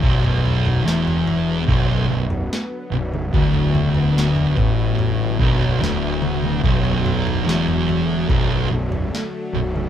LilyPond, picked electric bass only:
\new Staff \with { instrumentName = "Picked electric bass" } { \clef bass \time 4/4 \key b \minor \tempo 4 = 73 b,,,4 e,,4 b,,,8 b,,,8 r8 b,,,8 | d,,4. a,,4 b,,,8 d,,4 | b,,,4 e,,4 b,,,8 b,,,8 r8 b,,,8 | }